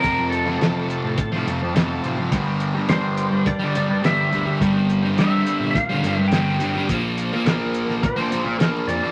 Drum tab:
HH |x-x-x-x-x-x-x-x-|x-x-x-x-x-x-x-x-|x-x-x-x-x-x-x-x-|x-x-x-x-x-x-x-x-|
SD |----o-------o---|----o-------o---|----o-------o---|----o--o----o---|
BD |o-------o-------|o-------o-------|o-------o-------|o-------o-------|